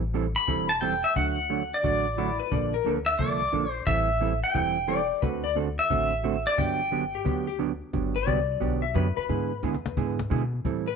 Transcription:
Already playing: A1
0.14 E3 G3 C4 E4 A4, cajon slap
0.36 B5
0.48 E1 E3 G3 C4 E4 A4, cajon bass
0.69 A5
0.81 E3 G3 C4 E4 A4 G5, cajon slap
1.04 E5
1.16 D2 D3 F#3 A3 D4 F#4 F#5, cajon bass
1.50 D3 F#3 A3 D4 F#4, cajon slap
1.74 D5
1.83 A1 D3 F#3 A3 D4 F#4, cajon bass
2.17 D3 F#3 A3 D4 E4 F#4, cajon slap
2.40 B4
2.51 A#1 D3 F3 A#3 D4 A4 D5, cajon bass
2.74 A#4
2.85 D2 D3 F3 A#3 D4 A4, cajon slap
3.06 E5
3.19 C2 D3 F3 A#3 D4 A4 D5, cajon bass
3.52 A#1 D3 F3 A#3 D4 A4, cajon slap
3.71 C5
3.87 A1 E3 G3 C4 E4 A4 E5, cajon bass
4.21 E3 G3 C4 E4 A4, cajon slap
4.44 G5
4.54 E1 E3 G3 C4 E4 A4, cajon bass
4.87 E3 G3 C4 E4 A4 D5, cajon slap
5.22 D2 D3 A3 C4 F#4 A4 B4, cajon bass
5.44 D5
5.55 D3 A3 C4 F#4 A4, cajon slap
5.79 E5
5.90 A1 D3 A3 C4 F#4 A4, cajon bass
6.24 D3 A3 C4 F#4 A4, cajon slap
6.47 D5
6.57 G1 D3 F#3 B3 D4 G4 G5, cajon bass
6.91 D3 F#3 B3 D4 G4, cajon slap
7.15 G4
7.24 D2 D3 F#3 B3 D4 G4, cajon bass
7.47 G4
7.59 D3 F#3 B3 D4 G4, cajon slap
7.93 G1 D3 F#3 B3 D4 G4, cajon bass, cajon slap
8.16 B4
8.27 C2 D3 F#3 B3 D4 G4 D5, cajon bass, cajon slap
8.60 B1 D3 F#3 B3 D4 G4, cajon bass, cajon slap
8.82 E5
8.94 F#2 D3 F#3 B3 D4 G4 B4, cajon bass, cajon slap
9.17 B4, muted upright bass stroke, cajon slap
9.29 G#2 D3 G#3 B3 E4 G#4, cajon bass, cajon slap
9.63 E2 D3 G#3 B3 E4 G#4, cajon bass, cajon slap
9.74 cajon slap
9.86 cajon slap
9.97 G#2 D3 G#3 B3 E4 G#4, cajon bass, cajon slap
10.19 cajon slap
10.30 B2 D3 G#3 B3 E4 G#4, cajon bass, cajon slap
10.53 cajon slap
10.64 A2 E3 G3 C4 E4 A4, cajon bass, cajon slap
10.88 B4

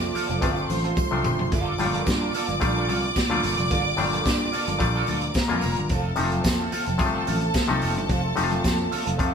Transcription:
Already playing: C3 F3 A3 F4 A4 D5 D6
0.02 muted clean electric guitar stroke
0.15 C4 F4 A4, open hi-hat, tambourine, low conga
0.29 F1 C4 F4 A4, closed hi-hat, high conga
0.41 G1 C3 F3 A3 C4 F4 A4, kick, closed hi-hat, tambourine
0.56 muted clean electric guitar stroke, tambourine
0.70 A1 C5 C6, muted clean electric guitar stroke, open hi-hat, tambourine, muted conga, high conga
0.84 C4 F4 A4, closed hi-hat
0.97 muted clean electric guitar stroke, kick, high tom, tambourine, muted conga
1.11 C2 C3 F3 A3 C4 D4 F4 A4, high conga
1.24 G1, muted clean electric guitar stroke, mid tom, tambourine, muted conga, low conga
1.39 F1, muted clean electric guitar stroke, floor tom, high conga
1.52 G1 A#2 D3 A#3 F4 G4 A4 D5 D6, kick, closed hi-hat, tambourine, muted conga, low conga
1.78 G1 A2 G3 A3 A#3 F4 A4, open hi-hat, tambourine, muted conga, high conga
1.85 A#2
1.93 A#3 F4 A4, closed hi-hat, high conga
2.06 G2, muted clean electric guitar stroke, kick, snare, closed hi-hat, tambourine
2.21 A#3 F4 A4
2.34 A#3 F4 A4, open hi-hat, tambourine, muted conga, low conga
2.48 G1, muted clean electric guitar stroke, closed hi-hat, tambourine, high conga
2.60 A#1 A#2 G3 A3 F4, muted clean electric guitar stroke, kick, closed hi-hat, tambourine
2.76 A#3 F4 A4, tambourine
2.88 C2 A#3 F4 A4, open hi-hat, tambourine, muted conga, high conga
3.03 muted clean electric guitar stroke, closed hi-hat
3.16 muted clean electric guitar stroke, kick, snare, closed hi-hat, tambourine, muted conga
3.30 D2 A#2 G3 A3 A#3 F4 A4, high conga
3.43 G1 A#3 F4 A4, open hi-hat, tambourine, muted conga, low conga
3.58 F1, muted clean electric guitar stroke, closed hi-hat, high conga
3.70 G1 A#3 F4 A4, kick, closed hi-hat, tambourine, low conga
3.85 muted clean electric guitar stroke
3.97 G1 A2 G3 A3 D4, muted clean electric guitar stroke, open hi-hat, tambourine, high conga
4.04 A#2
4.13 A#3 F4 A4, closed hi-hat, tambourine, high conga
4.25 G2, kick, snare, closed hi-hat, tambourine
4.40 muted clean electric guitar stroke
4.53 A#3 F4 A4, open hi-hat, tambourine, muted conga, low conga
4.67 G1 A#3 F4 A4, closed hi-hat, tambourine, high conga
4.79 A#1 A#2 G3 A3 F4, muted clean electric guitar stroke, kick, closed hi-hat, tambourine
4.94 A#3 F4 A4, tambourine
5.07 D2 A#3 F4 A4, open hi-hat, tambourine, muted conga, high conga
5.22 muted clean electric guitar stroke, closed hi-hat
5.34 A#4 A#5, muted clean electric guitar stroke, kick, snare, closed hi-hat, tambourine, muted conga
5.48 F2 A#2 G3 A#3 F4 A4, tambourine, high conga
5.61 F1, muted clean electric guitar stroke, open hi-hat, tambourine, muted conga, low conga
5.76 G1, muted clean electric guitar stroke, closed hi-hat, high conga
5.89 F1 C3 F3 A3 C4 F4 A4 A5, kick, closed hi-hat, tambourine, low conga
6.16 F1 C3 F3 A3 C4 D#4 F4 A4, open hi-hat, tambourine, muted conga, high conga
6.24 F4
6.32 C4 F4 A4, closed hi-hat, high conga
6.44 F2, muted clean electric guitar stroke, kick, snare, closed hi-hat, tambourine
6.59 C4 F4 A4
6.72 C4 F4 A4, open hi-hat, tambourine, muted conga, low conga
6.86 F1, muted clean electric guitar stroke, closed hi-hat, tambourine, high conga
6.98 G1 C3 F3 G#3 F4, muted clean electric guitar stroke, kick, closed hi-hat, tambourine
7.06 A3
7.14 C4 F4 A4
7.27 A1 C4 F4 A4, open hi-hat, tambourine, muted conga, high conga
7.41 muted clean electric guitar stroke, closed hi-hat
7.54 muted clean electric guitar stroke, kick, snare, closed hi-hat, tambourine, muted conga
7.68 C2 C3 F3 A3 C4 D#4 F4 A4, tambourine, high conga
7.81 F1 C4 F4 A4, open hi-hat, tambourine, low conga
7.96 G1, muted clean electric guitar stroke, closed hi-hat, high conga
8.09 F1 C4 F4 A4, kick, closed hi-hat, tambourine, muted conga, low conga
8.24 muted clean electric guitar stroke
8.36 F1 C3 F3 A3 D#4, open hi-hat, tambourine, high conga
8.44 F4
8.51 C4 F4 A4, closed hi-hat, tambourine, high conga
8.64 F2, muted clean electric guitar stroke, kick, snare, closed hi-hat, tambourine, muted conga
8.79 muted clean electric guitar stroke
8.92 C4 F4 A4, open hi-hat, tambourine, muted conga, low conga
9.06 F1 C4 F4 A4, closed hi-hat, tambourine, high conga
9.19 F2 C3 F3 A3 C4 F4 A4, kick, closed hi-hat, tambourine, muted conga

